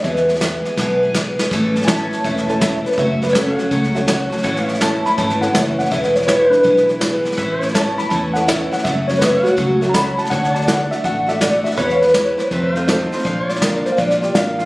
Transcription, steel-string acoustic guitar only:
X:1
M:4/4
L:1/8
Q:"Swing" 1/4=164
K:A
V:1 name="Steel-string acoustic guitar"
[E,,B,,E,G,B,G] [E,G,B,G] [E,G,B,G] [E,G,B,G] [E,,B,,E,G,B,G] [E,G,B,G] [E,G,B,G] [E,G,B,G] | [A,,E,A,CA] [A,CA] [E,A,CA] [A,CA] [A,,E,A,CA] [A,CA] [E,A,CA] [A,CA] | [F,,C,F,A,CF] [F,A,CF] [F,A,CF] [F,A,CF] [F,,C,F,A,CF] [F,A,CF] [F,A,CF] [F,A,CF] | [A,,E,A,CE] [A,CE] [E,A,CE] [A,CE] [A,,E,A,CE] [A,CE] [E,A,CE] [A,CE] |
[E,,B,,E,G,B,E] [E,G,B,E] [E,G,B,E] [E,G,B,E] [E,,B,,E,G,B,E] [E,G,B,E] [E,G,B,E] [E,G,B,E] | [A,,E,A,CE] [A,CE] [E,A,CE] [A,CE] [A,,E,A,CE] [A,CE] [E,A,CE] [A,CE] | [F,,C,F,A,CF] [F,A,CF] [F,A,CF] [F,A,CF] [F,,C,F,A,CF] [F,A,CF] [F,A,CF] [F,A,CF] | [D,A,DF] [A,DF] [D,A,DF] [A,DF] [D,A,DF] [A,DF] [D,A,DF] [A,DF] |
[E,,B,,E,G,B,E] [E,G,B,E] [E,G,B,E] [E,G,B,E] [=F,,=C,_E,A,=C=F] [E,A,CF] [E,A,CF] [E,A,CF] | [K:Bb] [B,,D,B,DF] [B,DF] [D,B,DF] [B,DF] [B,,D,B,DF] [B,DF] [D,B,DF] [B,DF] |]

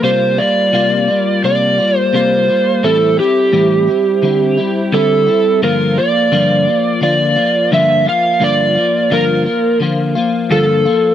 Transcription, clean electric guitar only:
X:1
M:4/4
L:1/8
Q:1/4=86
K:Gdor
V:1 name="Clean electric guitar"
[C,G,B,F] [G,B,F] [C,G,B,F] [G,B,F] [C,G,B,F] [G,B,F] [C,G,B,F] [G,B,F] | [A,,E,G,CE] [G,CE] [A,,E,G,CE] [G,CE] [D,G,CE] [G,CE] [D,G,CE] [G,CE] | [G,,D,F,B,F] [F,B,F] [G,,D,F,B,F] [F,B,F] [D,F,B,F] [F,B,F] [G,,D,F,B,F] [F,B,F] | [G,,D,F,B,F] [F,B,F] [G,,D,F,B,F] [F,B,F] [D,F,B,F] [F,B,F] [G,,D,F,B,F] [F,B,F] |]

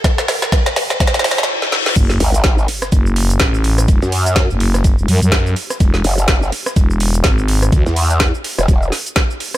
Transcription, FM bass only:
X:1
M:4/4
L:1/16
Q:"Swing 16ths" 1/4=125
K:F#m
V:1 name="FM bass" clef=bass
z16 | F,,,2 z6 F,,,4 A,,,4 | E,,, z4 F,,,4 E,,, F,, F,,3 z2 | E,,,2 z6 E,,,4 G,,,4 |
D,, z12 z3 |]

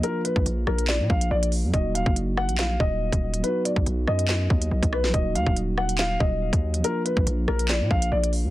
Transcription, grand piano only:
X:1
M:4/4
L:1/8
Q:1/4=141
K:Ebm
V:1 name="Grand piano"
B c z B =d f d z | e f z g f e3 | =B =d z ^d4 B | e f z g f e3 |
B c z B =d f d z |]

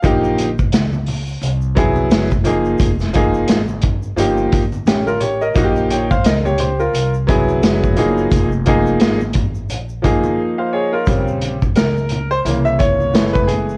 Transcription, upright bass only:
X:1
M:4/4
L:1/16
Q:"Swing 16ths" 1/4=87
K:Fm
V:1 name="Upright bass" clef=bass
B,,,4 D,,4 C,,4 _G,,,4 | F,,,4 A,,,4 G,,,2 A,,,2 =A,,,4 | B,,,4 D,,4 C,,4 _G,,,4 | F,,,4 A,,,4 B,,,3 z4 z |
B,,,4 D,,4 C,,4 _G,,,4 |]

